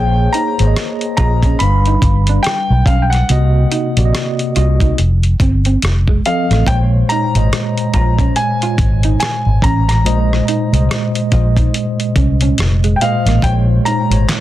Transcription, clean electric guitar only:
0.35 0.54 D#4 medium
0.77 muted clean electric guitar stroke soft
1.20 1.39 F4 medium
1.45 1.58 C#4 medium
1.87 2.00 D#4 medium
2.03 muted clean electric guitar stroke soft
2.29 2.42 D4 medium
2.88 3.07 C#4 medium
3.72 3.91 D#4 medium
4.14 muted clean electric guitar stroke soft
4.56 4.76 F4 medium
4.82 4.95 D#4 medium
4.99 muted clean electric guitar stroke soft
5.42 5.61 C4 medium
5.66 5.80 C4 medium
6.09 6.22 G#3 medium
6.27 muted clean electric guitar stroke soft
6.51 6.64 A3 medium
7.12 7.31 D#4 medium
7.54 muted clean electric guitar stroke soft
7.96 8.15 F4 medium
8.20 8.34 C#4 medium
8.63 8.76 F4 medium
8.80 muted clean electric guitar stroke soft
9.05 9.18 D#4 medium
9.64 9.83 C#4 medium
10.49 10.68 D#4 medium
10.91 muted clean electric guitar stroke soft
11.33 11.53 F4 medium
11.58 11.71 D#4 medium
11.75 muted clean electric guitar stroke soft
12.17 12.37 C#4 medium
12.42 12.56 C#4 medium
12.84 12.98 G#3 medium
13.02 muted clean electric guitar stroke soft
13.28 13.41 A#3 medium
13.87 14.06 D#4 medium
14.29 muted clean electric guitar stroke soft

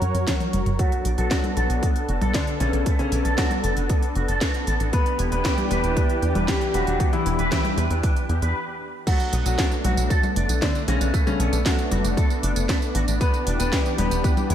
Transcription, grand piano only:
0.79 1.06 F#3 medium
0.79 1.06 F#4 medium
1.18 1.45 F#3 medium
1.18 1.45 F#4 medium
1.57 1.84 F#3 medium
1.57 1.84 F#4 medium
2.35 2.52 D3 medium
2.35 2.52 D4 medium
2.60 2.87 C#3 medium
2.60 2.87 C#4 medium
2.99 3.26 C#3 medium
2.99 3.26 C#4 medium
3.38 3.56 F#3 medium
3.38 3.56 F#4 medium
4.93 5.20 B3 medium
4.93 5.20 B4 loud
5.32 5.59 B3 medium
5.32 5.59 B4 medium
5.71 5.97 B3 medium
5.71 5.97 B4 medium
6.48 6.66 G3 medium
6.48 6.66 G4 medium
6.74 7.01 F#3 medium
6.74 7.01 F#4 medium
7.13 7.40 E3 medium
7.13 7.40 E4 medium
7.52 7.70 E3 medium
7.52 7.70 E4 medium
9.07 9.34 F#3 medium
9.07 9.34 F#4 loud
9.46 9.72 F#3 medium
9.46 9.72 F#4 medium
9.85 10.11 F#3 medium
9.85 10.11 F#4 medium
10.62 10.80 D3 medium
10.62 10.80 D4 medium
10.88 11.15 C#3 medium
10.88 11.15 C#4 loud
11.27 11.53 C#3 medium
11.27 11.53 C#4 medium
11.66 11.83 F#3 medium
11.66 11.83 F#4 medium
13.21 13.47 B3 medium
13.21 13.47 B4 loud
13.60 13.86 B3 medium
13.60 13.86 B4 medium
13.98 14.25 B3 medium
13.98 14.25 B4 loud

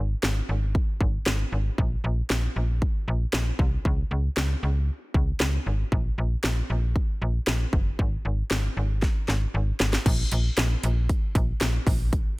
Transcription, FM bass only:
0.00 0.15 G#1 medium
0.23 0.41 G#1 loud
0.49 0.76 G#1 medium
1.01 1.19 G#1 loud
1.26 1.45 G#1 loud
1.52 1.70 G#1 medium
1.78 1.96 A#1 loud
2.04 2.22 A#1 loud
2.30 2.48 A#1 loud
2.56 2.83 A#1 medium
3.08 3.26 A#1 loud
3.34 3.52 A#1 loud
3.59 3.77 C2 loud
3.85 4.03 C#2 loud
4.11 4.29 C#2 medium
4.37 4.55 C#2 loud
4.63 4.90 C#2 loud
5.14 5.33 C#2 loud
5.40 5.58 C#2 loud
5.66 5.84 G#1 medium
5.92 6.10 A#1 loud
6.18 6.36 A#1 loud
6.44 6.62 A#1 loud
6.70 6.97 A#1 loud
7.22 7.40 A#1 loud
7.47 7.66 A#1 loud
7.73 7.91 F#1 medium
7.99 8.17 G#1 loud
8.25 8.43 G#1 medium
8.51 8.69 G#1 loud
8.77 9.04 G#1 loud
9.28 9.46 G#1 loud
9.54 9.72 G#1 loud
9.80 9.98 G#1 medium
10.06 10.24 A#1 loud
10.32 10.50 A#1 medium
10.58 10.76 A#1 loud
10.83 11.11 A#1 loud
11.35 11.53 A#1 loud
11.61 11.79 A#1 loud
11.87 12.23 A#1 medium

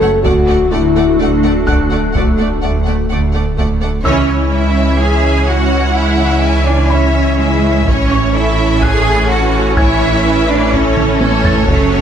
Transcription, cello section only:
0.00 0.19 F#2 medium
0.25 0.67 D2 medium
0.72 1.14 D2 medium
1.20 1.62 D2 medium
1.68 2.10 D2 medium
2.14 2.57 D2 soft
2.63 3.05 D2 soft
3.11 3.53 D2 soft
3.58 4.00 D2 soft
4.05 4.50 C#4 medium
4.53 5.00 E4 medium
5.01 5.48 G#4 medium
5.48 5.96 F#4 medium
5.96 6.66 E4 medium
6.67 6.91 D4 medium
6.91 7.39 C#4 medium
7.39 7.87 G#3 medium
7.87 8.33 C#4 medium
8.34 8.82 E4 medium
8.82 9.29 G#4 medium
9.30 9.77 F#4 medium
9.77 10.47 E4 medium
10.48 10.72 D4 medium
10.73 11.20 C#4 medium
11.20 11.68 A3 medium
11.67 12.01 C#4 medium

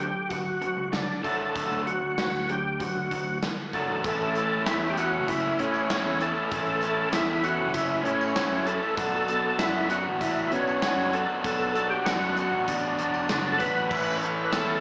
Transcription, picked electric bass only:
0.00 0.11 D3 medium
0.77 1.04 C#2 medium
1.71 1.85 D2 medium
2.01 2.15 D2 medium
2.17 2.84 D2 medium
2.95 3.09 D2 medium
3.11 3.38 D2 medium
3.73 3.87 F#1 medium
3.88 4.02 A1 medium
4.05 4.58 A1 loud
4.66 5.14 E2 medium
5.12 5.52 F#1 medium
5.59 5.86 A2 medium
6.05 6.32 E2 loud
6.52 7.05 A1 medium
7.14 7.61 E2 medium
7.59 7.99 F#1 medium
8.05 8.32 A2 medium
8.52 8.78 F#2 medium
8.98 9.51 B1 medium
9.58 10.07 F#2 medium
10.06 10.46 A1 medium
10.51 10.78 B2 medium
10.97 11.24 F#2 medium
11.44 11.98 B1 medium
12.06 12.53 F#2 medium
12.52 12.92 A1 medium
12.98 13.26 E1 medium
13.29 13.57 F#1 medium
13.60 13.88 A1 medium
13.91 14.44 A1 loud
14.53 14.80 E2 medium

